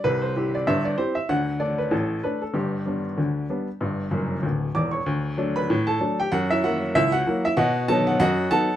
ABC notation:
X:1
M:2/4
L:1/16
Q:"Swing 16ths" 1/4=96
K:G
V:1 name="Upright piano"
B c2 d e d c e | f2 d B A2 B A | G8- | G4 z2 [dd'] [^c^c']- |
[K:D] [cc']3 [Bb]2 [Aa]2 [Gg] | [Ff] [Ee] [Ff]2 [Ee] [Ff]2 [Ee] | [F^df]2 [Aa] [Ff] [Fdf]2 [Afa]2 |]
V:2 name="Upright piano" clef=bass
[C,,C,]2 [CEG]2 [G,,,G,,]2 [CEG]2 | [D,,D,]2 [A,D]2 [A,,,A,,]2 [A,D]2 | [G,,,G,,]2 [G,B,D]2 [D,,D,]2 [G,B,D]2 | [G,,,G,,]2 [F,,,F,,]2 [D,,,D,,]2 [E,,,E,,]2 |
[K:D] D,,2 [F,A,D]2 A,,2 [F,A,D]2 | F,,2 [F,^A,E]2 C,,2 [F,A,E]2 | B,,2 [F,B,^D]2 F,,2 [F,B,D]2 |]